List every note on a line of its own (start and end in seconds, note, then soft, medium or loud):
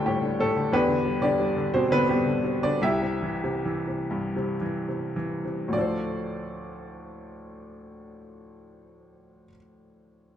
0.00 0.69 D2 medium
0.00 0.06 A2 medium
0.00 0.22 D3 medium
0.00 0.74 F4 medium
0.00 0.06 G4 medium
0.00 0.40 A4 medium
0.00 0.73 B4 medium
0.00 0.74 F5 medium
0.00 0.75 G5 medium
0.00 0.75 A5 medium
0.00 0.75 B5 medium
0.06 0.38 A2 medium
0.06 0.38 G3 soft
0.06 0.41 G4 medium
0.22 0.55 D3 soft
0.39 0.72 A2 medium
0.39 0.71 A3 medium
0.39 0.74 A4 medium
0.56 0.72 D3 soft
0.72 2.78 E2 medium
0.72 1.20 B3 medium
0.72 1.19 D4 medium
0.72 1.19 G4 medium
0.72 1.24 B4 medium
0.88 1.20 D3 medium
1.05 1.38 G3 soft
1.22 1.55 D3 soft
1.22 1.70 D4 medium
1.22 1.70 G4 medium
1.22 1.75 D5 medium
1.40 2.07 G3 medium
1.56 1.89 D3 soft
1.74 2.79 B2 medium
1.74 1.90 C4 medium
1.74 1.92 C5 medium
1.91 2.25 D3 medium
1.91 2.08 B3 medium
1.91 2.08 B4 loud
2.09 2.43 G3 medium
2.09 2.60 B3 medium
2.09 2.60 G4 soft
2.09 2.65 B4 medium
2.26 2.62 D3 soft
2.44 2.81 G3 medium
2.63 2.82 D3 medium
2.63 2.82 D4 medium
2.63 2.81 D5 medium
2.82 5.68 C2 medium
2.82 4.56 E4 medium
2.82 4.57 G4 medium
2.82 4.56 E5 medium
3.02 3.42 C3 soft
3.22 3.64 E3 soft
3.44 3.86 C3 medium
3.65 4.60 E3 medium
3.87 4.35 C3 soft
4.11 5.69 G2 medium
4.36 4.87 C3 soft
4.61 5.15 E3 soft
4.88 5.43 C3 soft
5.16 5.72 E3 soft
5.45 5.72 C3 soft
5.68 9.44 D2 medium
5.68 9.46 A2 soft
5.73 9.49 F3 soft
5.73 9.51 D4 soft
5.73 9.48 D5 medium
5.78 9.54 A4 soft
5.78 9.56 C5 soft